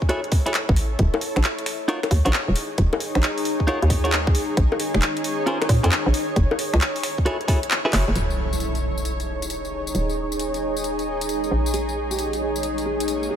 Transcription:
Already playing: ambient pad E4 A4 C#5
0.02 kick
0.09 clean electric guitar E4 F#4 G#4 A4 C#5, closed hi-hat
0.24 closed hi-hat
0.32 kick, open hi-hat
0.46 clean electric guitar E4 F#4 G#4 A4 C#5, closed hi-hat
0.54 clap, closed hi-hat
0.69 fm bass A1, kick
0.76 open hi-hat
0.99 fm bass D#1, ambient pad D#4, kick, closed hi-hat
1.14 high bongo
1.20 ambient pad G#4, open hi-hat
1.36 fm bass A#1, finger snap
1.44 clap, closed hi-hat
1.59 closed hi-hat
1.66 finger snap, open hi-hat
1.88 clean electric guitar D#4 F4 F#4 A#4 C#5, closed hi-hat
2.03 finger snap, closed hi-hat, high bongo
2.11 fm bass D#2, kick, open hi-hat
2.25 fm bass A#1, clean electric guitar D#4 F4 F#4 A#4 C#5, closed hi-hat
2.33 clap, closed hi-hat
2.48 fm bass D#1
2.56 open hi-hat
2.78 fm bass D#1, kick, closed hi-hat
2.93 high bongo
3.00 open hi-hat
3.15 fm bass A#1, finger snap
3.23 clap, closed hi-hat
3.38 open hi-hat
3.45 open hi-hat
3.60 kick
3.67 clean electric guitar D#4 F4 F#4 A#4 C#5, closed hi-hat
3.82 fm bass D#2, closed hi-hat
3.90 kick, open hi-hat
4.04 clean electric guitar D#4 F4 F#4 A#4 C#5, closed hi-hat
4.12 clap, closed hi-hat
4.27 kick
4.35 open hi-hat
4.57 fm bass A#1, kick, closed hi-hat
4.72 high bongo
4.80 open hi-hat
4.94 fm bass F1, finger snap
5.02 clap, closed hi-hat
5.17 closed hi-hat
5.24 open hi-hat
5.46 clean electric guitar C#4 F4 G#4 A#4 C5, closed hi-hat
5.62 finger snap, closed hi-hat, high bongo
5.69 fm bass A#2, kick, open hi-hat
5.83 fm bass F2, clean electric guitar C#4 F4 G#4 A#4 C5, closed hi-hat
5.92 clap, closed hi-hat
6.06 fm bass A#1
6.14 open hi-hat
6.36 fm bass F#1, ambient pad E4, kick, closed hi-hat
6.51 high bongo
6.59 open hi-hat
6.63 ambient pad A4
6.73 fm bass C#2, finger snap
6.81 clap, closed hi-hat
6.96 open hi-hat
7.03 finger snap, open hi-hat
7.18 kick
7.25 clean electric guitar E4 F#4 G#4 A4 C#5, closed hi-hat
7.41 closed hi-hat
7.48 clean electric guitar E4 F#4 G#4 A4 C#5, kick, open hi-hat
7.63 closed hi-hat
7.71 clap, closed hi-hat
7.85 clean electric guitar E4 F#4 G#4 A4 B4
7.93 fm bass F#1, clean electric guitar E4 F#4 G#4 A4 C#5, clap, open hi-hat
8.08 fm bass F#1
8.15 fm bass D#1, ambient pad D#4, closed hi-hat, tambourine, impact
8.30 tambourine
8.52 ambient pad G#4, tambourine
8.60 closed hi-hat, tambourine
8.75 closed hi-hat, tambourine
8.98 tambourine
9.05 closed hi-hat, tambourine
9.20 closed hi-hat, tambourine
9.42 closed hi-hat, tambourine
9.50 closed hi-hat, tambourine
9.65 tambourine
9.87 tambourine
9.95 fm bass D#1, closed hi-hat, tambourine
10.10 tambourine
10.32 tambourine
10.39 closed hi-hat, tambourine
10.54 closed hi-hat, tambourine
10.77 tambourine
10.84 closed hi-hat, tambourine
10.99 closed hi-hat, tambourine
11.21 closed hi-hat, tambourine
11.29 closed hi-hat, tambourine
11.44 tambourine
11.51 fm bass A#1
11.66 tambourine
11.73 nylon-string guitar G#4, closed hi-hat, tambourine, riser
11.89 tambourine
12.11 nylon-string guitar G4, tambourine
12.19 closed hi-hat, tambourine
12.33 closed hi-hat, tambourine
12.41 nylon-string guitar G#4
12.56 tambourine
12.63 closed hi-hat, tambourine
12.78 closed hi-hat, tambourine
12.86 nylon-string guitar G#4
13.00 closed hi-hat, tambourine
13.08 closed hi-hat, tambourine
13.23 tambourine
13.30 nylon-string guitar G#4

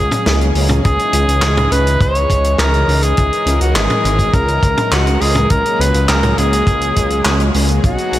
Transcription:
Already playing: detuned saw bass C#2, analog synth pad F#3 G#3 A#3 C#4 G#4, tenor saxophone G#4
0.11 closed hi-hat, mid tom
0.26 detuned saw bass C#2, snare, closed hi-hat
0.41 closed hi-hat
0.55 detuned saw bass C#2, open hi-hat
0.69 closed hi-hat, mid tom
0.84 detuned saw bass C#2, analog synth pad E3 G#3 D#4, tenor saxophone G#4, kick, closed hi-hat
0.99 closed hi-hat
1.13 detuned saw bass C#2, closed hi-hat
1.28 detuned saw bass C#2, closed hi-hat
1.42 detuned saw bass C#2, snare, clap, closed hi-hat
1.57 closed hi-hat, mid tom
1.71 detuned saw bass C#2, tenor saxophone B4, closed hi-hat
1.87 closed hi-hat
2.00 detuned saw bass C#2, tenor saxophone C#5, kick, closed hi-hat
2.15 closed hi-hat
2.30 detuned saw bass C#2, kick, closed hi-hat
2.44 closed hi-hat
2.58 detuned saw bass C#2, tenor saxophone A#4, snare, clap, closed hi-hat
2.74 closed hi-hat
2.88 detuned saw bass C#2, open hi-hat
3.03 tenor saxophone G#4, closed hi-hat
3.17 detuned saw bass C#2, analog synth pad A#4, kick, closed hi-hat
3.33 closed hi-hat
3.46 detuned saw bass C#2, closed hi-hat
3.61 detuned saw bass C#2, tenor saxophone F#4, closed hi-hat
3.75 detuned saw bass G#1, tenor saxophone G#4, snare, clap, closed hi-hat
3.90 closed hi-hat, mid tom
4.05 detuned saw bass G#1, closed hi-hat
4.19 kick, closed hi-hat
4.33 detuned saw bass C#2, tenor saxophone A#4, kick, closed hi-hat
4.48 closed hi-hat
4.63 detuned saw bass C#2, kick, closed hi-hat
4.77 closed hi-hat, mid tom
4.92 detuned saw bass C#2, tenor saxophone F#4, snare, clap, closed hi-hat
5.07 closed hi-hat
5.21 detuned saw bass C#2, tenor saxophone G#4, open hi-hat
5.35 closed hi-hat, mid tom
5.50 detuned saw bass C#2, analog synth pad F#3 A#3 C#4 G#4, tenor saxophone A#4, kick, closed hi-hat
5.66 closed hi-hat
5.80 detuned saw bass C#2, tenor saxophone B4, closed hi-hat
5.94 detuned saw bass C#2, closed hi-hat
6.08 detuned saw bass C#2, tenor saxophone A#4, snare, clap, closed hi-hat
6.23 closed hi-hat, mid tom
6.38 detuned saw bass C#2, tenor saxophone G#4, closed hi-hat
6.53 closed hi-hat
6.67 detuned saw bass C#2, kick, closed hi-hat
6.81 closed hi-hat
6.96 detuned saw bass C#2, kick, closed hi-hat
7.10 closed hi-hat
7.25 detuned saw bass C#2, snare, clap, closed hi-hat
7.40 closed hi-hat
7.54 detuned saw bass C#2, open hi-hat
7.69 closed hi-hat
7.83 detuned saw bass B1, analog synth pad B3 D#4, tenor saxophone F#4, kick, closed hi-hat
7.98 closed hi-hat
8.12 detuned saw bass B1, closed hi-hat

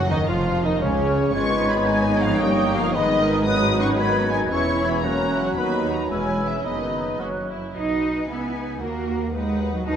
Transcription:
Already playing: clarinet F#4
0.09 cello section D#2, viola section D#3, french horn section D#3, bassoon D#3, violin section D#4 D#5, cor anglais D#4, clarinet D#4, flute section D#5
0.27 double bass section F1, cello section F2, viola section F3, french horn section F3, bassoon F3, cor anglais F4, violin section F4 F5, clarinet F4, flute section F5
0.63 cello section D#2, french horn section D#3, viola section D#3, bassoon D#3, clarinet D#4, cor anglais D#4, violin section D#4 D#5, flute section D#5
0.81 double bass section C#2, cello section C#2, french horn section C#3, viola section C#3, bassoon C#3, cor anglais C#4, violin section C#4 C#5, clarinet C#4, flute section C#5
1.33 double bass section G#1, cello section G#2, violin section G#3 B4 C#6, bassoon G#3, viola section B3 D#4, french horn section C#4, clarinet F4, cor anglais C#5, flute section G#6
1.48 violin section B3
1.62 violin section D#4
1.70 french horn section B3, violin section B5
1.74 violin section G#4
1.87 french horn section G#3, clarinet D#4, violin section D#4 G#5
2.02 violin section B3
2.15 violin section G#3
2.23 french horn section F3, violin section F5
2.28 violin section B3
2.40 double bass section G1, cello section G2, french horn section G3, viola section A#3, bassoon A#3, violin section C#4 C#5 G5, flute section D#6
2.54 violin section D#4
2.68 violin section G4
2.76 french horn section F3, violin section F5
2.82 violin section A#4
2.93 double bass section G#1, cello section G#2, french horn section D#3, bassoon G#3, violin section G#3 B4 D#5, viola section B3, clarinet D#4, cor anglais B4, flute section D#6
3.08 violin section B3
3.21 violin section D#4, cor anglais A#4
3.35 violin section G#4
3.46 viola section F#3 D#4, bassoon F#3, violin section B3 D#6, french horn section D#4, cor anglais B4, flute section F#6
3.61 violin section D#4
3.74 violin section F#4
3.80 french horn section C#4, violin section C#6
3.88 violin section G#4
3.97 bassoon D#3, french horn section B3, clarinet F#4, violin section F#4 B5, flute section G#6
4.12 violin section D#4
4.26 violin section B3
4.32 french horn section G#3, violin section G#5
4.38 violin section D#4
4.50 double bass section E1, cello section E2, viola section E3 E4, bassoon E3, violin section G#3 C#5 C#6, french horn section C#4, clarinet E4, cor anglais C#5, flute section G#6
4.65 violin section C#4
4.78 violin section E4
4.86 french horn section B3, violin section B5
4.92 violin section G#4
5.03 bassoon F#3, viola section F#3 C#4, french horn section A#3, violin section A#3 A#5, clarinet C#4, cor anglais C#5, flute section F#6
5.19 violin section C#4
5.32 violin section E4
5.40 french horn section F#3, violin section F#5
5.44 violin section F#4
5.56 cello section D#2, double bass section D#2, viola section F#3 D#4, french horn section B3, clarinet D#4, violin section F#4 B4 B5, cor anglais B4, flute section F#6
5.92 french horn section A#3, violin section A#5
6.09 double bass section E1, cello section E2, french horn section G#3, viola section G#3 C#4, clarinet C#4, violin section E4 B4 G#5, cor anglais B4, flute section E6
6.46 french horn section E3, violin section E5
6.65 double bass section F#1, cello section F#2, french horn section D#3, viola section F#3 B3, bassoon G#3, clarinet B3, violin section D#4 B4 D#5, cor anglais B4, flute section D#6
7.20 double bass section F#1, cello section F#2, viola section F#3 C#4, bassoon F#3, clarinet A#3, violin section F#4, cor anglais C#5, flute section F#6
7.48 violin section E4
7.74 double bass section B1, cello section D#4, viola section F#4, violin section B4 D#5
8.28 double bass section C#2, cello section B3, viola section E4, violin section G#5
8.55 viola section D#4
8.81 double bass section D#2, cello section A#3, viola section F#4, violin section A#4 F#5
9.08 viola section F#4
9.33 cello section G#3, viola section D#4, violin section B4 F#5
9.73 cello section F#3
9.86 double bass section D#2, cello section D#4, viola section F#4, violin section B4 A5

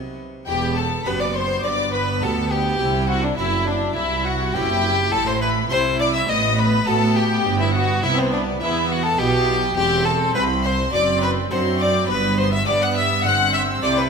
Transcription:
Already playing: double bass section C2, harpsichord C3 B3 B4, cello section C3, viola section F#3, violin section B3 B4, violin D#5
0.47 double bass section E1, cello section E2, harpsichord E2, viola section B3, violin G4, violin section G4 G5
0.75 violin section A4 A5, violin A4
1.04 double bass section F#1, cello section F#2, harpsichord F#2 B3 G4, viola section B3, violin section B4 B5, violin B4
1.20 violin D5, violin section D5 D6
1.34 violin C5, violin section C5 C6
1.64 double bass section G1, harpsichord G2, cello section G2, viola section B3, violin D5, violin section D5 D6
1.93 violin B4, violin section B4 B5
2.22 harpsichord D2 B3 G4, double bass section D2, cello section D2, violin section A4 A5, violin A4
2.50 violin section G4 G5, violin G4
2.79 double bass section C2, harpsichord C3, cello section C3, viola section E4
3.09 violin section F#4 F#5, violin F#4
3.23 violin section D4 D5, violin D4
3.36 double bass section F#1, harpsichord F#2 C4 E4, cello section F#2, violin E4, violin section E4 E5, viola section E4
3.66 violin section D4 D5, violin D4
3.96 harpsichord C2, double bass section C2, cello section C2, violin section E4 E5, violin E4, viola section E4
4.25 violin F#4, violin section F#4 F#5
4.54 double bass section F#1, harpsichord F#2 C4 E4, cello section F#2, viola section E4, violin G4, violin section G4 G5
5.12 double bass section A1, harpsichord A2, cello section A2, viola section E4, violin A4, violin section A4 A5
5.27 violin C5, violin section C5 C6
5.42 violin B4, violin section B4 B5
5.70 double bass section C2, harpsichord C3 C4 E4, cello section C3, viola section E4, violin section C5 C6, violin C5
6.00 violin D5, violin section D5 D6
6.14 violin E5, violin section E5 E6
6.29 double bass section A1, cello section A2, harpsichord A2, viola section B3, violin section D#5 D#6, violin D#5
6.58 violin B4, violin section B4 B5
6.86 double bass section A2, harpsichord A3 B3 F#4, cello section A3, viola section B3, violin A4, violin section A4 A5
7.15 violin G4, violin section G4 G5
7.45 double bass section G1, cello section G2, harpsichord G2, viola section B3
7.60 violin section E4 E5, violin E4
7.74 violin section F#4 F#5, violin F#4
8.02 double bass section C2, cello section C3, harpsichord C3 B3 E4, viola section B3, violin section E4 E5, violin E4
8.18 violin section C4 C5, violin C4
8.32 violin section D4 D5, violin D4
8.60 double bass section E2, cello section E3, harpsichord E3, viola section B3, violin E4, violin section E4 E5
8.89 violin F#4, violin section F#4 F#5
9.03 violin A4, violin section A4 A5
9.18 double bass section B1, cello section B2, harpsichord B2 B3 E4, viola section B3, violin G4, violin section G4 G5
9.76 double bass section E1, cello section E2, harpsichord E2, viola section C4, violin section G4 G5, violin G4
10.05 violin A4, violin section A4 A5
10.34 double bass section C2, cello section C2, harpsichord C2 C4 E4, violin B4, violin section B4 B5
10.63 violin C5, violin section C5 C6
10.92 double bass section F#1, cello section F#2, harpsichord F#2, viola section C4, violin D5, violin section D5 D6
11.22 violin B4, violin section B4 B5
11.51 double bass section F#2, cello section F#3, harpsichord F#3 A3 C4 D4, viola section C4, violin C5, violin section C5 C6
11.80 violin D5, violin section D5 D6
12.08 double bass section G1, harpsichord G2, cello section G2, viola section B3, violin section B4 B5, violin B4
12.37 violin section C5 C6, violin C5
12.52 violin section E5 E6, violin E5
12.66 double bass section G2, harpsichord G3 B3 D4, cello section G3, viola section B3, violin section D5 D6, violin D5
12.81 violin section F#5 F#6, violin F#5
12.95 violin section E5 E6, violin E5
13.24 double bass section G1, harpsichord G2, cello section G2, viola section C4, violin section F#5 F#6, violin F#5
13.54 violin section E5 E6, violin E5
13.82 double bass section C2, cello section C3, harpsichord C3 A3 C4 E4, violin D5, violin section D5 D6
13.97 violin section B4 B5, violin B4

